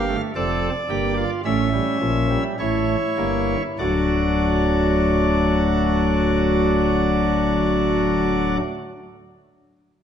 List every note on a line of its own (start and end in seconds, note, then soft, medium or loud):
0.00 0.16 G1 medium
0.00 0.15 G2 medium
0.00 0.15 G4 medium
0.00 0.21 F5 medium
0.09 0.32 A3 medium
0.36 0.69 F1 medium
0.36 0.69 F2 medium
0.36 0.70 C4 medium
0.36 0.69 A4 medium
0.36 1.30 D5 medium
0.90 1.24 G1 medium
0.90 1.24 G2 medium
0.90 1.24 A#3 medium
0.90 1.14 G4 medium
1.17 1.41 F4 medium
1.45 1.80 A1 medium
1.45 1.80 A2 medium
1.45 1.69 A3 medium
1.45 2.43 C#4 medium
1.45 2.43 E5 medium
1.73 1.97 G3 medium
2.01 2.37 A#1 medium
2.01 2.37 A#2 medium
2.01 2.26 F3 medium
2.30 2.55 G3 medium
2.59 2.96 A1 medium
2.59 2.96 A2 medium
2.59 2.96 A3 medium
2.59 3.62 E4 medium
2.59 3.62 C#5 medium
3.18 3.56 G1 medium
3.18 3.56 G2 medium
3.18 3.56 A#3 medium
3.79 8.56 D1 medium
3.79 8.57 D2 medium
3.79 8.60 F#3 medium
3.79 8.57 A3 medium
3.79 8.60 D4 medium
3.79 8.57 F#4 medium
3.79 8.57 D5 medium